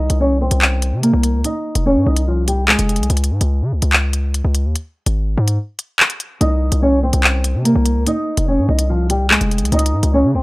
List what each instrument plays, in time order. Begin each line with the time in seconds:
Already playing: nylon-string guitar D#4 D#5
0.10 808-style bass C2, closed hi-hat
0.20 nylon-string guitar C#4 C#5
0.41 nylon-string guitar C4 C5
0.51 808-style bass C2, closed hi-hat
0.62 clap
0.82 closed hi-hat
0.93 808-style bass C3
1.03 nylon-string guitar A#3 A#4, closed hi-hat
1.13 808-style bass C2
1.23 closed hi-hat
1.34 808-style bass C#2
1.44 nylon-string guitar D#4 D#5, closed hi-hat
1.75 808-style bass F1, closed hi-hat
1.86 nylon-string guitar C#4 C#5
1.96 808-style bass G#2
2.06 808-style bass C2, nylon-string guitar D#4 D#5
2.17 closed hi-hat
2.27 nylon-string guitar F3 F4
2.48 nylon-string guitar G3 G4, closed hi-hat
2.68 nylon-string guitar G#3 G#4, clap
2.79 808-style bass F1, closed hi-hat
2.89 closed hi-hat
2.96 808-style bass C2, closed hi-hat
3.03 closed hi-hat
3.10 808-style bass C#2, closed hi-hat
3.17 closed hi-hat
3.24 closed hi-hat
3.31 808-style bass G#2
3.41 808-style bass C#2, closed hi-hat
3.62 808-style bass C#3
3.72 808-style bass C#2
3.82 808-style bass C#2, closed hi-hat
3.93 clap
4.13 closed hi-hat
4.34 closed hi-hat
4.45 808-style bass C#2
4.55 closed hi-hat
4.65 808-style bass D#2
4.76 closed hi-hat
5.06 808-style bass G#1, closed hi-hat
5.38 808-style bass G#2
5.48 closed hi-hat
5.79 closed hi-hat
6.00 clap
6.10 closed hi-hat
6.20 closed hi-hat
6.41 808-style bass C2, nylon-string guitar D#4 D#5, closed hi-hat
6.72 808-style bass C2, closed hi-hat
6.82 nylon-string guitar C#4 C#5
7.03 nylon-string guitar C4 C5
7.13 808-style bass C2, closed hi-hat
7.24 clap
7.44 closed hi-hat
7.55 808-style bass C3
7.65 nylon-string guitar A#3 A#4, closed hi-hat
7.75 808-style bass C2
7.86 closed hi-hat
7.96 808-style bass C#2
8.07 nylon-string guitar D#4 D#5, closed hi-hat
8.37 808-style bass F1, closed hi-hat
8.48 nylon-string guitar C#4 C#5
8.58 808-style bass G#2
8.69 808-style bass C2, nylon-string guitar D#4 D#5
8.79 closed hi-hat
8.90 nylon-string guitar F3 F4
9.10 nylon-string guitar G3 G4, closed hi-hat
9.30 nylon-string guitar G#3 G#4, clap
9.41 808-style bass F1, closed hi-hat
9.51 closed hi-hat
9.58 808-style bass C2, closed hi-hat
9.65 closed hi-hat
9.72 808-style bass C#2, nylon-string guitar D#4 D#5, closed hi-hat
9.79 closed hi-hat
9.86 closed hi-hat
9.93 808-style bass G#2
10.03 808-style bass C#2, closed hi-hat
10.13 nylon-string guitar C#4 C#5
10.24 808-style bass C#3
10.34 808-style bass C#2, nylon-string guitar C4 C5